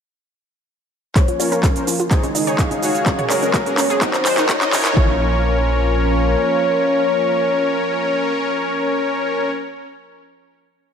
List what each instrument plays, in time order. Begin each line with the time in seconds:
1.16 analog synth pad F3 A#3 C#4 F4, synth pluck C5, soft synth lead C#5, kick, clap, closed hi-hat, riser, high conga, cabasa
1.28 synth pluck F4, closed hi-hat
1.40 sub bass A#1, supersaw synth C#4 A#4 C#5, synth pluck F4, open hi-hat, high bongo, cabasa
1.52 sub bass A#1, synth pluck A#4, closed hi-hat, high conga, cabasa
1.63 synth pluck F4, kick, clap, closed hi-hat, cabasa
1.76 supersaw synth C#4 A#4 C5, closed hi-hat, cabasa
1.87 sub bass A#1, synth pluck F4, open hi-hat, high conga, cabasa
2.00 sub bass A#1, synth pluck F4, closed hi-hat, cabasa
2.11 analog synth pad C#3 D#3 G#3 D#4 G#4, supersaw synth D#4 G#4 C#5, synth pluck C5, kick, clap, closed hi-hat, cabasa
2.23 synth pluck D#4, closed hi-hat, high conga, cabasa
2.35 sub bass G#2, synth pluck D#4, open hi-hat, high bongo, cabasa
2.47 sub bass G#1, supersaw synth D#4 G#4 C#5, synth pluck C#5, closed hi-hat, cabasa
2.59 synth pluck D#4, soft synth lead F5, kick, clap, closed hi-hat, cabasa
2.71 synth pluck D#4, closed hi-hat, high conga, cabasa
2.82 sub bass G#2, synth pluck D#4, supersaw synth F#4 G#4 C#5, open hi-hat, cabasa
2.95 sub bass G#1, closed hi-hat, cabasa
3.06 analog synth pad F#3 A#3 F#4, synth pluck C#4, kick, clap, closed hi-hat, high conga, cabasa
3.19 synth pluck C#5, closed hi-hat, mid tom
3.30 synth pluck C#4, supersaw synth F#4 G#4 A#4, soft synth lead C#5, clap, open hi-hat, high bongo, cabasa
3.42 synth pluck C#4, closed hi-hat, high conga, cabasa
3.54 synth pluck A#4, kick, clap, closed hi-hat, cabasa
3.66 synth pluck C#4, supersaw synth F#4 G#4 A#4, closed hi-hat, cabasa
3.78 synth pluck C#4, clap, open hi-hat, high conga, cabasa
3.90 synth pluck G#4, closed hi-hat, cabasa
4.02 analog synth pad A#2 D#3 D#4, supersaw synth D#4 F#4 A#4, soft synth lead C5, kick, clap, closed hi-hat, cabasa
4.14 synth pluck D#4, clap, closed hi-hat, high bongo, high conga, cabasa
4.25 sub bass F#2, synth pluck C5, clap, open hi-hat, cabasa
4.38 supersaw synth D#4 F#4 A#4, synth pluck D#4, clap, closed hi-hat, cabasa
4.49 synth pluck D#4, soft synth lead C#5, kick, clap, closed hi-hat, cabasa
4.62 synth pluck D#5, clap, closed hi-hat, high conga, cabasa
4.73 supersaw synth C#4 A#4 C#5, synth pluck D#4, clap, mid tom, open hi-hat, high bongo, cabasa
4.85 sub bass F#1, synth pluck D#4, clap, closed hi-hat, cabasa
4.97 sub bass A#1, analog synth pad F3 A#3 C#4 F4, supersaw synth C#4 A#4 C#5, soft synth lead C#5, synth pluck C#5, kick